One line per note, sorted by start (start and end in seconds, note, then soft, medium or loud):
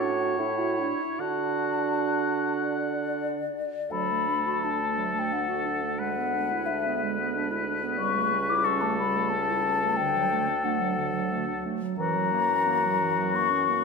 0.00 0.38 A2 medium
0.00 0.41 D4 medium
0.00 0.41 F#4 medium
0.00 1.22 C#5 soft
0.00 0.86 F#5 soft
0.38 0.89 A2 soft
0.38 1.22 E4 medium
0.38 0.61 E4 medium
0.59 0.80 F#4 medium
0.79 1.03 D4 medium
1.02 1.21 E4 soft
1.20 3.48 D3 soft
1.20 3.44 D4 medium
1.20 3.47 F#4 medium
1.20 3.52 F#5 soft
1.20 2.53 A5 soft
2.58 3.93 D5 medium
3.91 8.00 D2 soft
3.91 4.13 F#3 soft
3.91 5.96 A3 soft
3.91 6.01 A4 soft
3.91 4.65 B5 medium
4.11 4.29 A3 soft
4.28 4.48 D4 soft
4.47 4.66 F#4 soft
4.64 4.83 D4 soft
4.64 5.20 A5 medium
4.81 4.99 A3 soft
4.98 5.16 F#3 soft
5.15 5.34 A3 soft
5.19 5.34 G5 medium
5.32 5.50 D4 soft
5.32 5.99 F#5 medium
5.48 5.67 F#4 soft
5.66 5.84 D4 soft
5.82 5.99 A3 soft
5.99 6.19 G#3 soft
5.99 7.95 G#3 soft
5.99 8.66 B4 soft
5.99 6.68 F#5 medium
6.17 6.35 B3 soft
6.34 6.53 D4 soft
6.52 6.72 E4 soft
6.66 7.00 E5 soft
6.71 6.88 D4 soft
6.87 7.04 B3 soft
7.03 7.21 G#3 soft
7.20 7.37 B3 soft
7.36 7.52 D4 soft
7.51 7.68 E4 soft
7.66 7.85 D4 soft
7.83 7.99 B3 soft
7.98 10.00 C#2 medium
7.98 8.17 G3 soft
7.98 10.36 G3 soft
7.98 8.51 C#6 medium
8.16 8.34 A3 soft
8.32 8.51 C#4 soft
8.49 8.68 E4 soft
8.49 8.67 D6 medium
8.64 8.83 C#4 soft
8.64 11.71 A4 soft
8.64 8.83 C#6 medium
8.81 9.00 A3 soft
8.81 8.98 A5 medium
8.99 9.17 G3 soft
8.99 9.31 B5 medium
9.16 9.34 A3 soft
9.29 9.51 C#4 soft
9.29 9.98 A5 medium
9.49 9.66 E4 soft
9.64 9.84 C#4 soft
9.83 9.99 A3 soft
9.97 11.72 D2 medium
9.97 10.18 D3 medium
9.97 10.66 G5 medium
10.17 10.33 F#3 soft
10.32 10.50 A3 soft
10.49 10.66 D4 soft
10.64 11.95 F#3 soft
10.64 10.82 A3 soft
10.64 11.64 F#5 medium
10.81 10.99 F#3 soft
10.98 11.15 D3 soft
11.14 11.32 F#3 soft
11.31 11.48 A3 soft
11.46 11.67 D4 soft
11.65 11.84 A3 soft
11.82 11.97 F#3 soft
11.98 13.84 F#2 medium
11.98 12.16 E3 medium
11.98 13.84 E3 soft
11.98 13.84 F#4 medium
11.98 13.37 A#5 medium
12.15 12.34 F#3 soft
12.32 12.51 A#3 soft
12.49 12.68 C#4 soft
12.67 12.87 A#3 soft
12.85 13.02 F#3 soft
13.01 13.19 E3 soft
13.17 13.36 F#3 soft
13.34 13.52 A#3 soft
13.34 13.84 C#6 medium
13.51 13.71 C#4 soft
13.69 13.84 A#3 soft